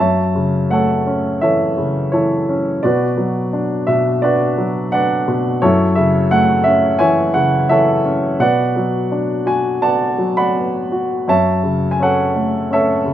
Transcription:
0.00 2.79 F#2 soft
0.00 0.71 C#5 soft
0.00 1.39 E5 soft
0.00 0.73 A5 medium
0.35 1.73 C#3 soft
0.70 2.08 A3 soft
0.70 1.42 A4 soft
0.70 1.42 C#5 soft
0.70 1.38 F#5 medium
1.07 2.44 C#4 soft
1.41 2.12 E3 soft
1.41 2.12 A4 soft
1.41 2.10 C#5 soft
1.41 2.15 E5 medium
1.77 2.80 C#3 soft
2.12 2.81 E3 soft
2.12 2.79 E4 soft
2.12 2.80 A4 soft
2.12 2.85 C#5 soft
2.49 2.83 C#4 soft
2.83 3.86 B2 soft
2.83 4.20 F#4 soft
2.83 4.20 B4 soft
2.83 3.91 D5 medium
3.17 4.54 F#3 soft
3.53 4.22 D4 soft
3.87 5.24 B2 soft
3.87 4.24 E5 medium
4.22 4.91 D4 soft
4.22 5.59 F#4 soft
4.22 4.93 B4 soft
4.22 4.93 D5 medium
4.58 5.59 F#3 soft
4.92 5.60 D4 soft
4.92 5.59 B4 soft
4.92 5.59 D5 soft
4.92 5.41 F#5 medium
5.28 5.61 B2 soft
5.62 8.36 F#2 medium
5.62 6.97 E4 medium
5.62 6.97 A4 medium
5.62 5.98 C#5 medium
5.95 7.31 C#3 soft
5.95 6.32 E5 medium
6.31 7.66 A3 soft
6.31 6.64 F#5 medium
6.64 8.01 C#4 soft
6.64 6.97 E5 medium
6.99 7.68 E3 soft
6.99 7.69 C#5 medium
6.99 7.68 E5 soft
6.99 7.35 G#5 medium
7.34 8.37 C#3 soft
7.34 7.70 F#5 medium
7.69 8.38 E3 soft
7.69 8.37 A4 soft
7.69 8.37 C#5 soft
7.69 8.42 E5 medium
8.05 8.39 C#4 soft
8.40 11.25 B2 soft
8.40 9.79 B4 soft
8.40 9.79 D5 medium
8.40 9.50 F#5 medium
8.76 10.15 F#3 soft
9.12 10.52 D4 soft
9.46 10.89 F#4 soft
9.46 9.84 G#5 medium
9.82 10.54 B3 soft
9.82 10.36 D5 soft
9.82 10.36 F#5 soft
9.82 10.39 A5 medium
10.18 11.25 F#3 soft
10.37 11.25 D5 soft
10.37 11.25 F#5 soft
10.37 10.89 B5 medium
10.56 11.27 B3 soft
10.92 11.27 F#4 soft
11.28 13.14 F#2 soft
11.28 12.01 C#5 soft
11.28 12.68 E5 medium
11.28 11.90 A5 medium
11.63 13.02 C#3 soft
11.91 12.00 G#5 soft
12.00 12.69 C#4 soft
12.00 12.72 A4 soft
12.00 12.72 C#5 soft
12.00 12.75 F#5 medium
12.36 13.14 A3 soft
12.71 13.14 C#4 soft
12.71 13.14 A4 soft
12.71 13.14 C#5 soft
12.71 13.14 E5 medium
13.05 13.14 C#3 soft

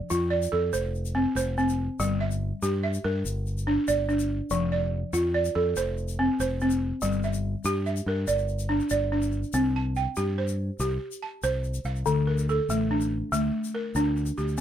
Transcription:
0.00 0.29 D5 medium
0.10 0.46 F2 medium
0.10 0.53 F4 medium
0.10 shaker medium
0.30 0.94 D5 medium
0.42 shaker medium
0.52 0.70 F2 medium
0.52 0.94 A4 medium
0.73 1.25 F1 medium
0.73 1.35 C5 medium
0.73 shaker medium
0.95 shaker soft
1.05 shaker soft
1.15 1.57 C4 medium
1.35 1.88 F1 loud
1.35 1.99 C5 medium
1.35 shaker medium
1.58 2.00 C4 medium
1.58 shaker soft
1.69 shaker soft
1.99 2.51 G1 loud
1.99 2.42 G3 medium
1.99 shaker medium
2.21 2.82 E5 medium
2.31 shaker soft
2.62 2.97 G2 medium
2.62 3.04 G4 medium
2.62 shaker medium
2.83 3.46 E5 medium
2.94 shaker medium
3.04 3.22 G2 loud
3.04 3.46 A#4 medium
3.24 3.77 G1 medium
3.24 shaker medium
3.46 shaker soft
3.58 shaker soft
3.67 4.08 D4 medium
3.88 4.40 G1 medium
3.88 4.51 D5 medium
3.88 shaker medium
4.09 4.51 D4 medium
4.09 shaker soft
4.19 shaker medium
4.50 5.03 F1 loud
4.50 4.93 F3 medium
4.50 shaker medium
4.72 5.33 D5 medium
5.13 5.48 F2 loud
5.13 5.55 F4 medium
5.13 shaker medium
5.34 5.97 D5 medium
5.45 shaker medium
5.55 5.73 F2 medium
5.55 5.97 A4 medium
5.76 6.28 F1 medium
5.76 6.39 C5 medium
5.76 shaker medium
5.97 shaker soft
6.08 shaker soft
6.19 6.60 C4 medium
6.39 6.91 F1 medium
6.39 7.03 C5 medium
6.39 shaker medium
6.61 7.03 C4 medium
6.61 shaker soft
6.70 shaker soft
7.02 7.54 G1 loud
7.02 7.44 G3 medium
7.02 shaker medium
7.12 shaker soft
7.23 7.85 E5 medium
7.23 shaker soft
7.33 shaker medium
7.64 7.99 G2 loud
7.64 8.07 G4 medium
7.64 shaker medium
7.86 8.49 E5 medium
7.86 shaker soft
7.97 shaker medium
8.06 8.24 G2 loud
8.06 8.50 A#4 medium
8.27 8.80 G1 medium
8.27 8.90 D5 medium
8.27 shaker medium
8.38 shaker soft
8.48 shaker soft
8.59 shaker soft
8.69 9.11 D4 medium
8.80 shaker soft
8.90 9.43 G1 medium
8.90 9.54 D5 medium
8.90 shaker medium
9.12 9.54 D4 medium
9.22 shaker soft
9.32 shaker soft
9.43 shaker soft
9.53 10.06 C2 medium
9.53 9.96 C4 medium
9.53 shaker medium
9.76 10.39 A5 medium
9.96 10.59 G5 medium
9.96 shaker soft
10.16 10.69 G2 medium
10.16 10.59 G4 medium
10.16 shaker medium
10.38 11.01 C5 medium
10.48 shaker soft
10.79 10.97 C2 medium
10.79 11.22 G4 medium
10.79 shaker medium
11.12 shaker soft
11.22 11.85 A5 medium
11.43 11.78 C2 medium
11.43 11.85 C5 medium
11.43 shaker medium
11.64 shaker soft
11.74 shaker soft
11.85 12.02 C2 medium
11.85 12.27 F5 medium
11.85 shaker soft
11.96 shaker soft
12.06 12.59 D2 medium
12.06 12.48 D3 medium
12.06 shaker medium
12.27 12.90 A#4 medium
12.38 shaker soft
12.49 13.12 A4 medium
12.49 shaker soft
12.69 13.21 A1 medium
12.69 13.12 A3 medium
12.69 shaker medium
12.91 13.54 D4 medium
13.01 shaker medium
13.32 13.49 D2 medium
13.32 13.74 A3 medium
13.32 shaker medium
13.64 shaker soft
13.74 14.37 A#4 medium
13.95 14.30 D2 medium
13.95 14.38 D4 medium
13.95 shaker medium
14.16 shaker soft
14.26 shaker soft
14.38 14.55 D2 medium
14.38 14.61 G4 medium
14.38 shaker soft
14.48 shaker soft

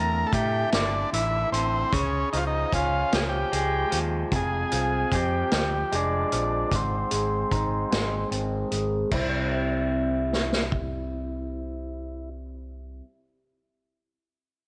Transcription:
0.00 0.23 E2 medium
0.00 1.52 A2 medium
0.00 0.71 D3 medium
0.00 0.27 A#4 loud
0.27 0.33 A4 medium
0.33 0.63 A2 medium
0.33 1.92 A3 medium
0.33 0.70 G4 medium
0.33 kick medium
0.33 closed hi-hat medium
0.72 1.03 G1 medium
0.72 1.52 D3 medium
0.72 1.10 D4 medium
0.72 snare medium
0.72 closed hi-hat medium
1.13 1.43 A1 medium
1.13 1.92 E3 medium
1.13 1.50 E4 medium
1.13 closed hi-hat medium
1.52 1.82 A1 medium
1.52 1.92 D3 medium
1.52 1.93 C4 medium
1.52 closed hi-hat medium
1.93 2.23 C#2 medium
1.93 3.92 C#3 medium
1.93 2.29 C#4 medium
1.93 kick loud
1.93 closed hi-hat medium
2.33 2.63 C#2 medium
2.33 3.12 F3 medium
2.33 2.39 D#4 medium
2.33 closed hi-hat medium
2.37 2.44 F4 medium
2.47 2.73 D#4 medium
2.72 3.02 C#2 medium
2.72 4.32 C#4 medium
2.72 3.14 F4 medium
2.72 kick medium
2.72 closed hi-hat medium
3.12 3.43 C#2 medium
3.12 3.90 F3 medium
3.12 3.19 G4 medium
3.12 3.24 G#4 medium
3.12 snare medium
3.12 closed hi-hat medium
3.29 3.99 G4 medium
3.52 3.83 C#2 medium
3.52 5.91 G#3 medium
3.52 closed hi-hat medium
3.91 4.23 D#2 medium
3.91 4.31 F3 medium
3.91 closed hi-hat medium
4.32 4.63 F1 medium
4.32 6.32 F2 medium
4.32 kick loud
4.32 closed hi-hat medium
4.36 5.16 G#4 medium
4.72 5.03 C2 medium
4.72 5.51 F3 medium
4.72 closed hi-hat medium
5.11 5.42 F2 medium
5.11 7.51 C4 medium
5.11 5.96 G4 medium
5.11 kick medium
5.11 closed hi-hat medium
5.51 5.83 D2 medium
5.51 6.31 F3 medium
5.51 snare medium
5.51 closed hi-hat medium
5.92 6.23 F1 medium
5.92 6.72 G#3 medium
5.92 6.76 D4 medium
5.92 closed hi-hat medium
6.32 6.63 A#1 medium
6.32 6.72 F3 medium
6.32 closed hi-hat medium
6.72 7.03 G#1 medium
6.72 8.72 G#2 medium
6.72 8.30 C4 medium
6.72 kick medium
6.72 closed hi-hat medium
7.11 7.43 G#1 medium
7.11 7.90 G#3 medium
7.11 closed hi-hat medium
7.52 7.83 G#1 medium
7.52 9.13 D#4 medium
7.52 kick medium
7.52 closed hi-hat medium
7.91 8.23 G#1 medium
7.91 8.70 G#3 medium
7.91 snare medium
7.91 closed hi-hat medium
8.31 8.62 G#1 medium
8.31 9.12 C4 medium
8.31 closed hi-hat soft
8.71 9.03 G#1 medium
8.71 9.12 G#3 soft
8.71 closed hi-hat soft
9.11 13.00 C2 medium
9.11 13.03 C3 medium
9.11 13.04 G3 medium
9.11 13.04 C4 medium
9.11 12.29 E4 medium
9.11 13.05 E4 medium
9.11 kick medium
9.11 crash medium
9.15 13.05 G4 medium
10.33 snare soft
10.53 snare medium
10.72 kick medium

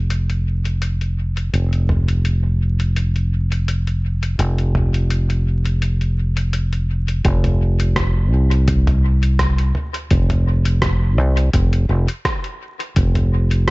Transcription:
0.00 1.50 F1 medium
0.10 closed hi-hat soft
0.30 closed hi-hat soft
0.65 closed hi-hat soft
0.82 closed hi-hat soft
1.01 closed hi-hat soft
1.37 closed hi-hat soft
1.53 4.36 F1 medium
1.53 closed hi-hat soft
1.73 closed hi-hat soft
1.89 mid tom medium
2.08 closed hi-hat soft
2.25 closed hi-hat soft
2.80 closed hi-hat soft
2.96 closed hi-hat soft
3.16 closed hi-hat soft
3.52 closed hi-hat soft
3.68 closed hi-hat soft
3.87 closed hi-hat soft
4.23 closed hi-hat soft
4.39 7.21 F1 medium
4.39 closed hi-hat soft
4.58 closed hi-hat soft
4.75 mid tom medium
4.94 closed hi-hat soft
5.10 closed hi-hat soft
5.30 closed hi-hat soft
5.65 closed hi-hat soft
5.82 closed hi-hat soft
6.01 closed hi-hat soft
6.37 closed hi-hat soft
6.53 closed hi-hat soft
6.73 closed hi-hat soft
7.08 closed hi-hat soft
7.25 8.32 F1 medium
7.25 kick loud
7.25 closed hi-hat medium
7.44 closed hi-hat soft
7.44 mid tom medium
7.80 closed hi-hat soft
7.96 kick loud
7.96 cross-stick medium
7.96 closed hi-hat medium
8.32 9.72 C2 medium
8.51 closed hi-hat soft
8.68 kick loud
8.68 closed hi-hat medium
8.87 closed hi-hat soft
8.87 mid tom medium
9.23 closed hi-hat soft
9.39 kick loud
9.39 cross-stick medium
9.39 closed hi-hat medium
9.58 closed hi-hat soft
9.75 mid tom medium
9.94 closed hi-hat soft
10.11 11.18 F1 medium
10.11 kick loud
10.11 closed hi-hat medium
10.30 closed hi-hat soft
10.30 mid tom medium
10.65 closed hi-hat soft
10.82 kick loud
10.82 cross-stick medium
10.82 closed hi-hat medium
11.18 11.50 C2 medium
11.37 closed hi-hat soft
11.53 11.85 F1 medium
11.53 kick loud
11.53 closed hi-hat medium
11.73 closed hi-hat soft
11.89 12.06 F1 medium
12.08 closed hi-hat soft
12.25 kick loud
12.25 cross-stick medium
12.25 closed hi-hat medium
12.44 closed hi-hat soft
12.80 closed hi-hat soft
12.96 13.71 F1 loud
12.96 kick loud
12.96 closed hi-hat medium
13.15 closed hi-hat soft
13.15 mid tom medium
13.51 closed hi-hat soft

